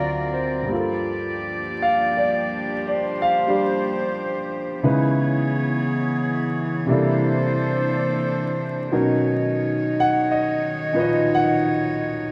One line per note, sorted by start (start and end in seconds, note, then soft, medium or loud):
0.00 0.70 D2 soft
0.00 0.70 D3 soft
0.00 0.69 F#3 medium
0.00 0.71 F#3 soft
0.00 0.68 C4 medium
0.00 0.72 C4 soft
0.00 0.70 F4 medium
0.00 0.70 F4 soft
0.00 0.69 A#4 medium
0.00 0.72 A#4 medium
0.00 0.33 C5 medium
0.00 0.55 D5 soft
0.00 0.69 D5 medium
0.00 0.34 F5 soft
0.33 0.89 C5 soft
0.63 4.80 G2 soft
0.63 3.45 G3 soft
0.69 4.80 F3 medium
0.69 4.83 A#3 soft
0.69 4.80 A#3 medium
0.69 4.80 D4 medium
0.69 4.84 F4 soft
0.69 2.77 D5 medium
0.73 4.81 G4 medium
0.73 4.86 A4 soft
1.82 2.12 F5 medium
2.17 2.78 D5 medium
2.79 4.83 C5 medium
2.87 3.16 D5 medium
3.22 3.73 F5 medium
3.47 4.84 G3 soft
3.47 4.84 D4 soft
3.47 4.85 G4 soft
4.83 6.88 C#3 medium
4.83 8.90 E3 medium
4.83 6.89 G#3 soft
4.83 6.89 D#4 soft
4.83 6.88 E4 soft
4.83 6.89 B4 medium
4.83 6.88 C#5 medium
4.87 6.89 B3 medium
4.87 6.88 G#4 medium
6.87 8.91 C3 medium
6.87 8.92 G3 soft
6.87 8.90 A#3 medium
6.87 8.92 A#3 medium
6.87 8.93 D4 medium
6.87 8.91 D4 medium
6.87 8.93 E4 soft
6.87 8.91 A4 medium
6.87 8.91 C5 medium
6.91 8.94 A4 medium
8.92 12.32 B2 soft
8.92 12.32 D#3 medium
8.92 12.32 F#3 soft
8.92 12.32 C#4 soft
8.92 12.32 D#4 medium
8.92 10.93 D#4 soft
8.92 12.32 A#4 soft
8.92 12.32 C#5 medium
10.00 10.29 F#5 medium
10.32 10.92 D#5 medium
10.93 12.32 A#2 soft
10.93 12.32 F3 soft
10.93 12.32 D#4 soft
10.93 12.32 B4 medium
11.00 11.30 D#5 medium
11.35 11.66 F#5 medium